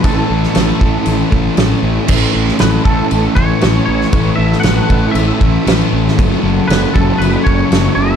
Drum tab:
CC |x---x---x---x---|x---x---x---x---|x---x---x---x---|x---x---x---x---|
SD |---oo-------o---|---oo-------o--o|---oo-------o--o|----o-------o---|
BD |o-----o---o-----|o-----o---o-----|o-----o---o-----|o-----o---o-----|